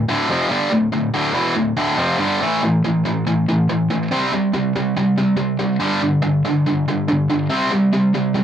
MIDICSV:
0, 0, Header, 1, 2, 480
1, 0, Start_track
1, 0, Key_signature, -1, "minor"
1, 0, Tempo, 424628
1, 799, Time_signature, 4, 2, 24, 8
1, 9537, End_track
2, 0, Start_track
2, 0, Title_t, "Distorted electric guitar"
2, 0, Program_c, 0, 30
2, 96, Note_on_c, 0, 38, 79
2, 99, Note_on_c, 0, 45, 94
2, 109, Note_on_c, 0, 50, 103
2, 320, Note_off_c, 0, 38, 0
2, 322, Note_off_c, 0, 45, 0
2, 327, Note_off_c, 0, 50, 0
2, 333, Note_on_c, 0, 41, 78
2, 347, Note_on_c, 0, 48, 80
2, 358, Note_on_c, 0, 53, 92
2, 554, Note_off_c, 0, 41, 0
2, 559, Note_on_c, 0, 43, 84
2, 566, Note_off_c, 0, 48, 0
2, 570, Note_off_c, 0, 53, 0
2, 572, Note_on_c, 0, 50, 94
2, 574, Note_on_c, 0, 55, 98
2, 791, Note_off_c, 0, 43, 0
2, 798, Note_off_c, 0, 50, 0
2, 799, Note_off_c, 0, 55, 0
2, 799, Note_on_c, 0, 38, 57
2, 808, Note_on_c, 0, 45, 67
2, 990, Note_off_c, 0, 38, 0
2, 995, Note_off_c, 0, 45, 0
2, 1041, Note_on_c, 0, 38, 62
2, 1045, Note_on_c, 0, 45, 69
2, 1231, Note_off_c, 0, 38, 0
2, 1233, Note_off_c, 0, 45, 0
2, 1285, Note_on_c, 0, 38, 90
2, 1290, Note_on_c, 0, 45, 94
2, 1296, Note_on_c, 0, 50, 98
2, 1503, Note_off_c, 0, 38, 0
2, 1508, Note_on_c, 0, 40, 100
2, 1514, Note_off_c, 0, 45, 0
2, 1515, Note_off_c, 0, 50, 0
2, 1519, Note_on_c, 0, 47, 91
2, 1519, Note_on_c, 0, 52, 91
2, 1745, Note_off_c, 0, 40, 0
2, 1750, Note_off_c, 0, 47, 0
2, 1750, Note_off_c, 0, 52, 0
2, 1759, Note_on_c, 0, 38, 63
2, 1759, Note_on_c, 0, 45, 64
2, 1949, Note_off_c, 0, 38, 0
2, 1949, Note_off_c, 0, 45, 0
2, 1998, Note_on_c, 0, 38, 91
2, 2006, Note_on_c, 0, 45, 89
2, 2017, Note_on_c, 0, 50, 89
2, 2226, Note_off_c, 0, 38, 0
2, 2231, Note_on_c, 0, 41, 79
2, 2233, Note_off_c, 0, 45, 0
2, 2239, Note_off_c, 0, 50, 0
2, 2245, Note_on_c, 0, 48, 86
2, 2245, Note_on_c, 0, 53, 88
2, 2466, Note_off_c, 0, 41, 0
2, 2473, Note_off_c, 0, 48, 0
2, 2473, Note_off_c, 0, 53, 0
2, 2473, Note_on_c, 0, 43, 79
2, 2485, Note_on_c, 0, 50, 78
2, 2491, Note_on_c, 0, 55, 81
2, 2707, Note_off_c, 0, 43, 0
2, 2713, Note_off_c, 0, 50, 0
2, 2716, Note_off_c, 0, 55, 0
2, 2730, Note_on_c, 0, 45, 80
2, 2735, Note_on_c, 0, 52, 85
2, 2736, Note_on_c, 0, 57, 82
2, 2948, Note_off_c, 0, 45, 0
2, 2950, Note_off_c, 0, 52, 0
2, 2951, Note_off_c, 0, 57, 0
2, 2975, Note_on_c, 0, 45, 59
2, 2984, Note_on_c, 0, 52, 65
2, 3181, Note_off_c, 0, 45, 0
2, 3185, Note_off_c, 0, 52, 0
2, 3213, Note_on_c, 0, 45, 53
2, 3216, Note_on_c, 0, 52, 64
2, 3420, Note_off_c, 0, 45, 0
2, 3421, Note_off_c, 0, 52, 0
2, 3448, Note_on_c, 0, 45, 62
2, 3458, Note_on_c, 0, 52, 69
2, 3657, Note_off_c, 0, 45, 0
2, 3662, Note_off_c, 0, 52, 0
2, 3691, Note_on_c, 0, 45, 58
2, 3702, Note_on_c, 0, 52, 63
2, 3899, Note_off_c, 0, 45, 0
2, 3904, Note_off_c, 0, 52, 0
2, 3939, Note_on_c, 0, 45, 68
2, 3950, Note_on_c, 0, 52, 66
2, 4143, Note_off_c, 0, 45, 0
2, 4149, Note_off_c, 0, 52, 0
2, 4175, Note_on_c, 0, 45, 55
2, 4180, Note_on_c, 0, 52, 54
2, 4381, Note_off_c, 0, 45, 0
2, 4384, Note_off_c, 0, 52, 0
2, 4414, Note_on_c, 0, 45, 52
2, 4417, Note_on_c, 0, 52, 65
2, 4621, Note_off_c, 0, 45, 0
2, 4623, Note_off_c, 0, 52, 0
2, 4651, Note_on_c, 0, 48, 76
2, 4653, Note_on_c, 0, 55, 81
2, 4661, Note_on_c, 0, 60, 76
2, 4869, Note_off_c, 0, 48, 0
2, 4870, Note_off_c, 0, 55, 0
2, 4874, Note_off_c, 0, 60, 0
2, 4899, Note_on_c, 0, 55, 69
2, 4900, Note_on_c, 0, 48, 53
2, 5104, Note_off_c, 0, 48, 0
2, 5104, Note_off_c, 0, 55, 0
2, 5127, Note_on_c, 0, 48, 64
2, 5136, Note_on_c, 0, 55, 69
2, 5338, Note_off_c, 0, 48, 0
2, 5342, Note_off_c, 0, 55, 0
2, 5377, Note_on_c, 0, 48, 61
2, 5380, Note_on_c, 0, 55, 63
2, 5583, Note_off_c, 0, 48, 0
2, 5585, Note_off_c, 0, 55, 0
2, 5613, Note_on_c, 0, 48, 63
2, 5622, Note_on_c, 0, 55, 70
2, 5821, Note_off_c, 0, 48, 0
2, 5826, Note_off_c, 0, 55, 0
2, 5850, Note_on_c, 0, 48, 59
2, 5852, Note_on_c, 0, 55, 75
2, 6051, Note_off_c, 0, 48, 0
2, 6054, Note_off_c, 0, 55, 0
2, 6064, Note_on_c, 0, 48, 62
2, 6068, Note_on_c, 0, 55, 68
2, 6287, Note_off_c, 0, 48, 0
2, 6289, Note_off_c, 0, 55, 0
2, 6319, Note_on_c, 0, 55, 67
2, 6322, Note_on_c, 0, 48, 56
2, 6535, Note_off_c, 0, 55, 0
2, 6536, Note_off_c, 0, 48, 0
2, 6552, Note_on_c, 0, 43, 70
2, 6557, Note_on_c, 0, 50, 80
2, 6570, Note_on_c, 0, 55, 93
2, 6781, Note_off_c, 0, 43, 0
2, 6783, Note_off_c, 0, 50, 0
2, 6790, Note_off_c, 0, 55, 0
2, 6800, Note_on_c, 0, 43, 58
2, 6801, Note_on_c, 0, 50, 61
2, 7015, Note_off_c, 0, 43, 0
2, 7016, Note_off_c, 0, 50, 0
2, 7030, Note_on_c, 0, 43, 59
2, 7039, Note_on_c, 0, 50, 66
2, 7250, Note_off_c, 0, 43, 0
2, 7255, Note_off_c, 0, 50, 0
2, 7287, Note_on_c, 0, 43, 58
2, 7298, Note_on_c, 0, 50, 77
2, 7499, Note_off_c, 0, 43, 0
2, 7505, Note_off_c, 0, 50, 0
2, 7534, Note_on_c, 0, 50, 69
2, 7535, Note_on_c, 0, 43, 58
2, 7743, Note_off_c, 0, 43, 0
2, 7743, Note_off_c, 0, 50, 0
2, 7781, Note_on_c, 0, 43, 61
2, 7790, Note_on_c, 0, 50, 61
2, 7987, Note_off_c, 0, 43, 0
2, 7991, Note_off_c, 0, 50, 0
2, 8006, Note_on_c, 0, 43, 55
2, 8010, Note_on_c, 0, 50, 61
2, 8219, Note_off_c, 0, 43, 0
2, 8221, Note_off_c, 0, 50, 0
2, 8247, Note_on_c, 0, 43, 60
2, 8249, Note_on_c, 0, 50, 63
2, 8460, Note_off_c, 0, 43, 0
2, 8461, Note_off_c, 0, 50, 0
2, 8471, Note_on_c, 0, 48, 78
2, 8475, Note_on_c, 0, 55, 74
2, 8483, Note_on_c, 0, 60, 91
2, 8702, Note_off_c, 0, 48, 0
2, 8704, Note_off_c, 0, 55, 0
2, 8708, Note_off_c, 0, 60, 0
2, 8715, Note_on_c, 0, 48, 60
2, 8726, Note_on_c, 0, 55, 73
2, 8935, Note_off_c, 0, 48, 0
2, 8940, Note_off_c, 0, 55, 0
2, 8960, Note_on_c, 0, 48, 61
2, 8967, Note_on_c, 0, 55, 69
2, 9178, Note_off_c, 0, 48, 0
2, 9181, Note_off_c, 0, 55, 0
2, 9202, Note_on_c, 0, 48, 60
2, 9206, Note_on_c, 0, 55, 67
2, 9419, Note_off_c, 0, 48, 0
2, 9421, Note_off_c, 0, 55, 0
2, 9433, Note_on_c, 0, 55, 60
2, 9435, Note_on_c, 0, 48, 57
2, 9537, Note_off_c, 0, 48, 0
2, 9537, Note_off_c, 0, 55, 0
2, 9537, End_track
0, 0, End_of_file